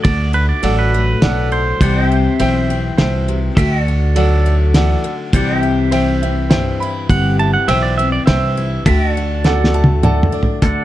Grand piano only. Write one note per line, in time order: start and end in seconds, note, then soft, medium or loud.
0.63 1.01 A4 medium
0.63 1.01 D5 medium
0.63 1.01 F#5 medium
1.21 1.59 A4 medium
1.21 1.60 D5 medium
1.21 1.60 F#5 medium
2.40 2.77 C5 medium
2.40 2.78 E5 medium
2.40 2.78 G5 medium
2.98 3.36 C5 medium
2.98 3.36 E5 medium
2.98 3.36 G5 medium
4.16 4.53 A4 medium
4.16 4.54 D5 medium
4.16 4.54 F#5 medium
4.75 5.12 A4 medium
4.75 5.12 D5 medium
4.75 5.13 F#5 medium
5.91 6.29 C5 medium
5.91 6.21 E5 medium
5.91 6.30 G5 medium
6.22 6.49 E5 medium
6.50 6.88 C5 medium
6.50 6.88 E5 medium
6.50 6.88 G5 medium
6.80 7.07 B5 medium
7.68 8.06 C5 medium
7.68 8.06 E5 medium
7.68 8.06 G5 medium
8.27 8.64 C5 medium
8.27 8.65 E5 medium
8.27 8.65 G5 medium
9.44 9.82 A4 medium
9.44 9.82 D5 medium
9.44 9.83 F#5 medium
9.74 10.01 A5 medium
10.03 10.41 A4 medium
10.03 10.31 D5 medium
10.03 10.31 F#5 medium
10.03 10.42 A5 medium
10.33 10.60 D5 medium